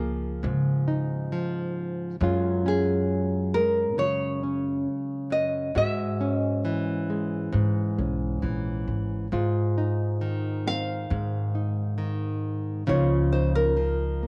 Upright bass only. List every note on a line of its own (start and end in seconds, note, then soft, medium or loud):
0.00 0.45 C#2 medium
0.44 2.17 C#3 medium
2.21 3.98 F#2 medium
3.98 5.72 F#3 medium
5.76 7.49 G#2 medium
7.54 7.95 G#2 medium
7.98 8.39 B1 medium
8.43 8.84 A#1 medium
8.88 9.28 G#1 medium
9.32 11.07 G#2 medium
11.11 12.84 G#2 medium
12.88 14.27 C#2 medium